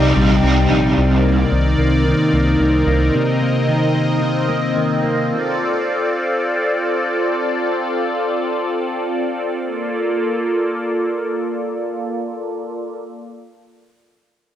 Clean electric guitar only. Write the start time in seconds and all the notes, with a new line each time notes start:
Already playing: C3 G3 C4 D#4
0.16 G3
0.43 C4
0.70 D#4
0.98 C3
1.25 A#3
1.52 D#3
1.79 A#3
2.06 D#3
2.33 A#3
2.60 D#3
2.87 A#3
3.14 C3
3.41 A#3
3.68 D#3
3.94 A#3
4.22 D#3
4.49 A#3
4.76 D#3
5.03 A#3